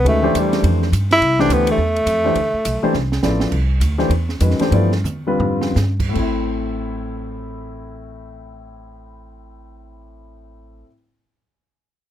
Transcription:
0.04 0.33 D2 medium
0.04 0.21 D#3 medium
0.04 0.21 G#3 medium
0.04 0.40 A3 medium
0.04 0.21 C#4 medium
0.04 0.21 F#4 medium
0.04 0.21 B4 medium
0.04 ride medium
0.23 0.85 E3 medium
0.23 0.85 A3 medium
0.23 0.85 D4 medium
0.23 0.85 G4 medium
0.23 0.86 C5 medium
0.35 0.63 E2 medium
0.35 hi-hat pedal medium
0.35 ride medium
0.39 0.66 G3 medium
0.53 snare soft
0.53 ride soft
0.63 0.91 F2 medium
0.63 ride medium
0.82 snare soft
0.92 1.20 G2 medium
0.92 hi-hat pedal medium
0.92 ride medium
1.11 1.42 E4 loud
1.11 snare soft
1.11 ride soft
1.20 1.49 C2 medium
1.20 ride medium
1.39 1.77 E3 medium
1.39 1.77 A3 medium
1.39 1.77 D4 medium
1.39 1.54 D4 medium
1.39 1.77 G4 medium
1.39 1.77 C5 medium
1.39 snare soft
1.49 1.78 D2 medium
1.49 1.69 B3 medium
1.49 hi-hat pedal medium
1.49 ride medium
1.67 ride medium
1.71 3.21 A3 medium
1.78 2.06 E2 medium
1.96 ride soft
2.06 2.35 F2 medium
2.06 hi-hat pedal soft
2.06 ride medium
2.24 2.35 E3 medium
2.24 2.35 A3 medium
2.24 2.35 D4 medium
2.24 2.35 G4 soft
2.24 2.35 C5 medium
2.35 2.52 D2 medium
2.35 ride medium
2.54 muted upright bass stroke soft
2.65 2.82 B1 medium
2.65 hi-hat pedal medium
2.65 ride medium
2.83 2.93 E3 medium
2.83 2.93 A3 medium
2.83 2.93 D4 medium
2.83 2.93 G4 medium
2.83 2.93 C5 medium
2.83 muted upright bass stroke soft
2.93 3.22 C2 medium
2.93 snare soft
3.12 snare soft
3.23 3.51 A1 medium
3.23 3.52 F3 soft
3.23 3.52 B3 soft
3.23 3.52 E4 soft
3.23 3.52 A4 soft
3.23 3.52 D5 medium
3.23 snare medium
3.23 hi-hat pedal medium
3.40 snare medium
3.51 3.80 C2 medium
3.51 kick medium
3.51 crash medium
3.80 4.09 D2 medium
3.80 hi-hat pedal medium
3.80 ride medium
3.98 4.09 E3 medium
3.98 4.09 A3 medium
3.98 4.09 D4 medium
3.98 4.09 G4 medium
3.98 4.09 C5 medium
3.98 snare soft
4.10 4.39 E2 medium
4.10 ride medium
4.29 snare soft
4.40 4.58 F2 medium
4.40 4.58 D#3 soft
4.40 4.58 G#3 soft
4.40 4.58 C#4 soft
4.40 4.58 F#4 soft
4.40 4.58 B4 medium
4.40 hi-hat pedal medium
4.40 ride medium
4.50 snare soft
4.59 4.88 E3 medium
4.59 4.88 A3 medium
4.59 4.88 D4 medium
4.59 4.88 G4 soft
4.59 4.89 C5 medium
4.59 muted upright bass stroke soft
4.59 snare soft
4.59 ride soft
4.71 5.04 G2 medium
4.71 4.90 F3 medium
4.71 4.90 B3 medium
4.71 4.90 E4 soft
4.71 4.90 A4 medium
4.71 4.91 D5 medium
4.71 ride medium
4.92 snare soft
5.04 5.38 E2 medium
5.04 hi-hat pedal medium
5.04 mid tom soft
5.27 5.74 D3 medium
5.27 5.74 G3 medium
5.27 5.74 C4 medium
5.27 5.74 F4 medium
5.27 5.74 B4 medium
5.39 5.75 F2 medium
5.39 floor tom medium
5.61 snare medium
5.76 6.14 G2 medium
5.76 snare soft
5.76 hi-hat pedal medium
6.00 kick medium
6.00 crash medium
6.09 10.79 A2 medium
6.09 10.83 A3 soft
6.15 10.82 A1 medium
6.15 10.86 C4 medium
6.15 10.89 E4 medium
6.15 kick soft
6.15 crash medium
6.22 10.92 E5 medium

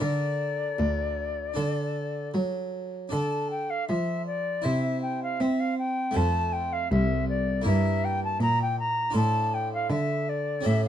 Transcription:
0.00 0.75 D3 soft
0.00 0.75 D3 medium
0.00 1.51 D4 soft
0.00 1.52 A#4 soft
0.00 2.30 D5 medium
0.78 1.52 D2 soft
0.78 1.53 D2 medium
1.54 2.30 D3 soft
1.54 2.31 D3 soft
1.54 3.07 D4 soft
1.54 3.08 A4 soft
2.34 3.08 F#3 soft
2.34 3.08 F#3 medium
3.09 3.85 D3 soft
3.09 3.85 D3 medium
3.09 4.59 D4 soft
3.09 4.60 A4 soft
3.09 3.48 A5 medium
3.50 3.71 G5 medium
3.70 3.87 F5 medium
3.88 4.61 F3 soft
3.88 4.61 F3 medium
3.88 4.25 E5 medium
4.27 4.66 D5 medium
4.62 5.36 C3 soft
4.62 5.37 C3 medium
4.62 6.10 E4 soft
4.62 6.11 C5 soft
4.62 5.01 E5 medium
5.02 5.21 G5 medium
5.23 5.42 F5 medium
5.40 6.12 C4 soft
5.40 6.12 C4 medium
5.40 5.61 E5 medium
5.60 5.78 F5 medium
5.78 6.18 G5 medium
6.11 7.60 A3 soft
6.11 7.60 F4 soft
6.11 7.61 C5 soft
6.16 6.87 F2 soft
6.16 6.87 F2 medium
6.16 6.54 A5 medium
6.53 6.74 G5 medium
6.73 6.91 F5 medium
6.91 7.62 C2 medium
6.91 7.62 C2 soft
6.91 7.28 E5 medium
7.29 7.65 D5 medium
7.62 8.36 G2 medium
7.62 9.09 A#3 soft
7.62 9.09 E4 soft
7.62 9.10 A#4 soft
7.66 8.36 G2 medium
7.66 8.06 E5 medium
8.04 8.22 G5 medium
8.24 8.41 A5 medium
8.40 9.10 A#2 medium
8.40 9.11 A#2 soft
8.40 8.59 A#5 medium
8.62 8.79 G5 medium
8.79 9.15 A#5 medium
9.10 10.59 D4 soft
9.10 10.60 F4 soft
9.10 10.60 A4 soft
9.14 9.86 A2 medium
9.14 9.86 A2 soft
9.14 9.55 A5 medium
9.54 9.72 G5 medium
9.74 9.91 F5 medium
9.90 10.61 D3 soft
9.90 10.61 D3 medium
9.90 10.31 E5 medium
10.29 10.67 D5 medium
10.61 10.88 C#4 soft
10.61 10.88 G4 soft
10.61 10.88 A4 soft
10.65 10.88 A2 soft
10.65 10.88 A2 medium
10.65 10.84 E5 medium

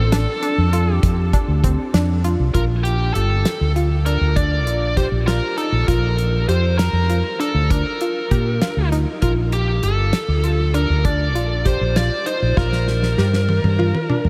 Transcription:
0.00 0.25 A1 medium
0.00 0.93 A4 medium
0.12 0.35 D4 medium
0.12 snare loud
0.12 closed hi-hat medium
0.42 0.65 D4 medium
0.42 closed hi-hat medium
0.58 0.99 F2 medium
0.73 1.19 F4 medium
0.73 closed hi-hat medium
0.93 1.90 G4 medium
1.03 1.31 F2 medium
1.03 kick loud
1.03 snare soft
1.03 closed hi-hat medium
1.33 1.56 D4 medium
1.33 kick medium
1.33 closed hi-hat medium
1.48 1.76 D2 medium
1.64 1.87 C4 medium
1.64 kick medium
1.64 closed hi-hat medium
1.94 2.35 F2 medium
1.94 2.17 D4 medium
1.94 snare medium
1.94 closed hi-hat medium
2.24 2.47 F4 medium
2.24 closed hi-hat medium
2.39 2.53 C2 medium
2.54 3.11 A#1 medium
2.54 3.00 F4 medium
2.54 2.62 A#4 medium
2.54 kick medium
2.54 closed hi-hat medium
2.83 3.13 G4 medium
2.83 closed hi-hat medium
3.14 3.43 G1 medium
3.14 3.61 G4 medium
3.14 3.71 A4 medium
3.14 closed hi-hat medium
3.45 snare medium
3.45 closed hi-hat medium
3.61 4.17 D2 medium
3.76 3.99 F4 medium
3.76 closed hi-hat soft
4.06 4.29 D4 medium
4.06 4.37 A#4 medium
4.06 closed hi-hat medium
4.21 4.66 D2 medium
4.36 4.59 D4 medium
4.36 4.99 D5 loud
4.36 kick loud
4.36 closed hi-hat medium
4.66 5.08 A#1 medium
4.66 4.90 F4 medium
4.66 closed hi-hat medium
4.97 5.20 G4 medium
4.97 5.05 C5 medium
4.97 kick medium
4.97 snare soft
4.97 closed hi-hat medium
5.12 5.39 A#1 medium
5.27 5.50 F4 medium
5.27 5.56 A#4 medium
5.27 snare medium
5.27 closed hi-hat medium
5.57 5.80 D#4 medium
5.57 5.86 A4 medium
5.57 closed hi-hat medium
5.72 5.86 A#1 medium
5.88 6.45 A#1 medium
5.88 6.34 F4 medium
5.88 6.48 A#4 medium
5.88 kick medium
5.88 closed hi-hat medium
6.18 closed hi-hat medium
6.48 6.90 F2 medium
6.48 6.95 G4 medium
6.48 6.78 C5 medium
6.48 closed hi-hat medium
6.78 7.40 A#4 medium
6.78 snare medium
6.78 closed hi-hat medium
6.93 7.21 F2 medium
7.10 7.33 F4 medium
7.10 closed hi-hat medium
7.40 7.63 D4 medium
7.40 7.71 A4 medium
7.40 closed hi-hat medium
7.54 7.82 D2 medium
7.70 7.93 D4 medium
7.70 8.89 A#4 medium
7.70 kick loud
7.70 closed hi-hat medium
8.01 8.24 F4 medium
8.01 closed hi-hat medium
8.31 8.59 A#2 medium
8.31 8.54 G4 medium
8.31 kick medium
8.31 closed hi-hat medium
8.62 8.85 F4 medium
8.62 snare loud
8.62 closed hi-hat medium
8.77 9.04 D2 medium
8.92 9.15 D#4 medium
8.92 snare soft
8.92 closed hi-hat medium
9.22 9.79 A#1 medium
9.22 9.69 F4 medium
9.22 9.30 A#4 medium
9.22 kick medium
9.22 closed hi-hat medium
9.52 9.81 G4 medium
9.52 closed hi-hat medium
9.83 10.11 G1 medium
9.83 10.29 G4 medium
9.83 10.75 A4 medium
9.83 closed hi-hat medium
10.13 snare loud
10.13 closed hi-hat medium
10.28 10.85 D2 medium
10.44 10.67 F4 medium
10.44 closed hi-hat soft
10.74 10.97 D4 medium
10.74 11.03 A#4 medium
10.74 closed hi-hat medium
10.90 11.35 D2 medium
11.05 11.28 D4 medium
11.05 11.68 D5 medium
11.05 kick medium
11.05 closed hi-hat medium
11.35 11.77 A#1 medium
11.35 11.58 F4 medium
11.35 closed hi-hat medium
11.65 11.88 G4 medium
11.65 11.98 C5 medium
11.65 kick medium
11.65 closed hi-hat medium
11.81 12.09 A#1 medium
11.96 12.19 F4 medium
11.96 12.28 D5 medium
11.96 snare medium
11.96 closed hi-hat medium
12.26 12.50 D#4 medium
12.26 12.55 C5 medium
12.26 closed hi-hat medium
12.42 12.56 A#1 medium
12.57 13.14 A#1 medium
12.57 13.03 F4 medium
12.57 14.29 A#4 medium
12.57 kick loud
12.57 snare soft
12.72 snare soft
12.88 snare medium
13.03 snare soft
13.18 13.60 G2 medium
13.18 13.64 G4 medium
13.18 snare medium
13.33 snare medium
13.49 high tom medium
13.64 13.91 G2 medium
13.64 high tom medium
13.79 14.02 F4 medium
13.79 high tom medium
13.95 high tom medium
14.09 14.29 D4 medium
14.09 mid tom medium
14.25 14.29 F2 medium
14.25 mid tom medium

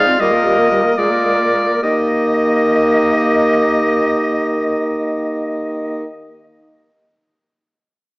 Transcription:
0.00 0.11 G#2 medium
0.00 0.20 D5 loud
0.00 0.21 F5 loud
0.06 0.19 C4 medium
0.06 0.20 F4 medium
0.19 0.88 A#2 medium
0.19 0.33 G3 medium
0.19 0.36 G4 medium
0.19 0.97 A#4 loud
0.19 1.00 D#5 loud
0.31 0.46 A#3 medium
0.31 0.48 A#4 medium
0.44 0.59 G3 medium
0.44 0.60 G4 medium
0.58 0.71 A#3 medium
0.58 0.71 A#4 medium
0.71 0.85 G3 medium
0.71 0.86 G4 medium
0.84 0.97 A#3 medium
0.84 0.97 A#4 medium
0.97 1.73 A#2 medium
0.97 1.13 G#3 medium
0.97 1.13 G#4 medium
0.97 1.82 A#4 medium
0.97 1.82 D5 loud
1.11 1.26 A#3 medium
1.11 1.26 A#4 medium
1.24 1.41 G#3 medium
1.24 1.41 G#4 medium
1.39 1.53 A#3 medium
1.39 1.52 A#4 medium
1.53 1.69 G#3 medium
1.53 1.69 G#4 medium
1.68 1.82 A#3 medium
1.68 1.82 A#4 medium
1.82 6.04 D#3 medium
1.82 6.03 A#3 medium
1.82 6.03 G4 medium
1.82 6.03 D#5 loud
1.82 6.04 D#5 medium

